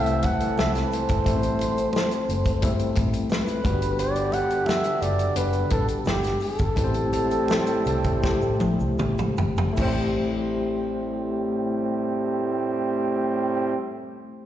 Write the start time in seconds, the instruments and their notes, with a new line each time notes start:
Already playing: fingered electric bass C2, trombone section E3 C4 A4, tine electric piano G3 A3 C4 E4 A4, flugelhorn E5
0.06 closed hi-hat, shaker
0.23 fingered electric bass B1, flugelhorn F#5, kick, closed hi-hat, muted conga, shaker
0.40 closed hi-hat, shaker
0.58 fingered electric bass C2, flugelhorn E5, snare, high conga, shaker
0.74 snare, closed hi-hat, high conga, shaker
0.85 flugelhorn B4
0.92 flugelhorn C5, closed hi-hat, shaker
1.09 fingered electric bass G1, kick, closed hi-hat, shaker
1.24 fingered electric bass A1, tine electric piano G3 A3 C4 E4 A4, kick, closed hi-hat, muted conga, shaker
1.43 closed hi-hat, shaker
1.59 closed hi-hat, muted conga, shaker
1.77 closed hi-hat, shaker
1.93 snare, high conga, shaker
2.11 closed hi-hat, shaker
2.29 fingered electric bass F#1, closed hi-hat, shaker
2.45 kick, closed hi-hat, shaker
2.61 fingered electric bass G1, tine electric piano G3 A3 B3 E4 A4, kick, closed hi-hat, shaker
2.69 tine electric piano C4
2.79 closed hi-hat, shaker
2.96 fingered electric bass A1, kick, closed hi-hat, muted conga, shaker
3.13 closed hi-hat, shaker
3.30 flugelhorn B4, snare, high conga, shaker
3.47 closed hi-hat, high conga, shaker
3.63 fingered electric bass G1, trombone section D3 B3 G4, tine electric piano G3 B3 D4 F#4 B4, kick, closed hi-hat, shaker
3.82 closed hi-hat, shaker
3.99 flugelhorn D5, closed hi-hat, shaker
4.15 closed hi-hat, shaker
4.32 flugelhorn F#5, closed hi-hat, muted conga, shaker
4.50 closed hi-hat, shaker
4.66 flugelhorn E5, snare, high conga, shaker
4.84 closed hi-hat, shaker
5.01 fingered electric bass F#1, flugelhorn D5, closed hi-hat, shaker
5.19 closed hi-hat, shaker
5.35 fingered electric bass F#1, tine electric piano G3 B3 D4 B4 F#5, flugelhorn B4, closed hi-hat, shaker
5.53 closed hi-hat, shaker
5.70 fingered electric bass A1, flugelhorn A4, kick, closed hi-hat, muted conga, shaker
5.88 closed hi-hat, shaker
6.05 fingered electric bass G1, flugelhorn G4, snare, high conga, shaker
6.23 snare, closed hi-hat, high conga, shaker
6.40 flugelhorn A4, open hi-hat, shaker
6.59 fingered electric bass G1, kick, closed hi-hat, shaker
6.75 fingered electric bass A1, trombone section A2 G3 C4, tine electric piano A3 C4 E4 G4 B4, kick, closed hi-hat, muted conga, shaker
6.84 tine electric piano C5
6.94 closed hi-hat, shaker
7.13 closed hi-hat, muted conga, shaker
7.31 closed hi-hat, shaker
7.48 snare, high conga, shaker
7.67 closed hi-hat, shaker
7.85 fingered electric bass C2, closed hi-hat, shaker
8.04 kick, closed hi-hat, shaker
8.22 tine electric piano A3 C4 E4 G4 C5, kick, snare, shaker
8.42 fingered electric bass A2, shaker
8.60 fingered electric bass A1, high tom, muted conga, shaker
8.80 fingered electric bass C2, shaker
8.98 fingered electric bass A1, mid tom, high conga, shaker
9.18 mid tom, high conga, shaker
9.37 fingered electric bass G1, floor tom, shaker
9.57 floor tom, shaker
9.73 tine electric piano A3 E4, shaker
9.77 fingered electric bass A1, trombone section A2 G3 C4, tine electric piano G4, kick, crash, muted conga
9.82 tine electric piano C5